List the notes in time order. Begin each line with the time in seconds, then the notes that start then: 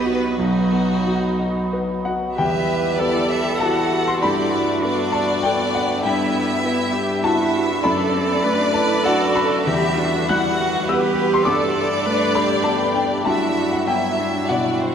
Already playing: B1 B3 F#4 B4 D#5
0.05 F#4
0.39 B1 F#3 D#4 F#4
0.73 B3
1.07 F#4
1.39 D#5
1.73 B4
2.05 F#4 F#5
2.36 E2 G3 E4 G4 B4 E5 G5
2.98 B3 E4 A4 D5
3.29 G4 E5
3.60 E4 F#4 F#5 A5
4.08 C6
4.21 G2 A3 D4 E4 G4 D5 B5
4.52 F#4
4.83 B3 D4 D5
5.12 A5
5.43 B3 D4 A4 G5
5.75 F#5
6.03 G2 G3 E4 E5 G5
6.64 B3 E4
6.93 G4
7.23 E4 F#4 E5 A5
7.82 F#2 A3 D4 A4 B4 B5
7.86 D5
8.13 C4
8.43 A3 D4 B4
8.73 E4 B4 A5
9.04 D4 F#4 A4 F#5
9.36 B5
9.66 E2 G3 G4 E5 F#5
9.98 D4 F#4
10.29 G3 E4 F#4 F#5 F#6
10.59 F#4
10.88 B3 G4 B4 F#5 E6
11.34 C6
11.45 G2 A3 D4 G4 A4 D5 D6
12.05 A3 B4
12.35 G4 B5
12.64 B3 G4 A5
12.95 G5
13.24 G2 F#3 E4 F#4 E5 A5
13.72 F#5
13.86 F#3 B3 E4 E5 G5
14.19 D4
14.49 B2 E4 F#4 D5 F#5
14.82 C5